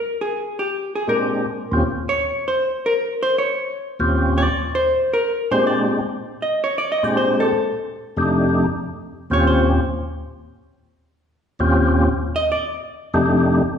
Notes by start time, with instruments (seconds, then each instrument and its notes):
Already playing: hollow-body jazz guitar A#4
0.21 hollow-body jazz guitar G#4
0.59 hollow-body jazz guitar G4
0.95 hollow-body jazz guitar G#4
1.07 tonewheel organ A#2 G#3 C4 D4 G4, hollow-body jazz guitar A#4
1.72 tonewheel organ D#2 A#2 C4 C#4 F4 G4
2.09 hollow-body jazz guitar C#5
2.48 hollow-body jazz guitar C5
2.86 hollow-body jazz guitar A#4
3.23 hollow-body jazz guitar C5
3.38 hollow-body jazz guitar C#5
3.99 tonewheel organ D#2 A#2 C4 C#4 F4 G4
4.38 hollow-body jazz guitar D5
4.75 hollow-body jazz guitar C5
5.13 hollow-body jazz guitar A#4
5.51 tonewheel organ A#2 G#3 C4 D4 G4, hollow-body jazz guitar C5
5.67 hollow-body jazz guitar D5
6.42 hollow-body jazz guitar D#5
6.64 hollow-body jazz guitar C#5
6.78 hollow-body jazz guitar D5
6.92 hollow-body jazz guitar D#5
7.03 tonewheel organ A#2 G#3 C4 D4 G4, hollow-body jazz guitar D5
7.17 hollow-body jazz guitar C5
7.40 hollow-body jazz guitar A4
8.17 tonewheel organ F2 C3 A3 D4 D#4 G4
9.30 tonewheel organ D#2 A#2 C4 C#4 F4 G4, hollow-body jazz guitar C#5
9.47 hollow-body jazz guitar C5
11.59 tonewheel organ D#2 A#2 C4 C#4 F4 G4
12.36 hollow-body jazz guitar D#5
12.52 hollow-body jazz guitar D5
13.14 tonewheel organ F2 C3 A3 D4 D#4 G4